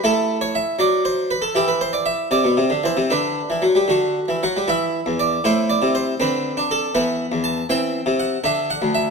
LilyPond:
<<
  \new Staff \with { instrumentName = "Harpsichord" } { \time 6/8 \key c \lydian \tempo 4. = 80 << { a'8. cis''16 e''8 d''8 c''8 b'16 a'16 | g'16 b'16 c''16 d''16 e''8 d''4 c''8 | b'4. fis'4 fis''8 | e''4 d''8 c''8 d''8 c''8 |
b'4 a'8 b'4 a''8 | g''4 fis''8 e''8 fis''8 e''8 | } \\ { e'4. r4. | e'4. r4. | d'4. r4. | e'4. e'4. |
c'4. b4. | c'4. d'4. | } >> }
  \new Staff \with { instrumentName = "Harpsichord" } { \clef bass \time 6/8 \key c \lydian a4. fis4. | e4. c16 b,16 c16 d16 e16 c16 | d8. e16 fis16 g16 d8. e16 fis16 g16 | e8. e,8. a,8. c8. |
d8. d'8. e8. e,8. | e8. c8. d8. d,8. | }
>>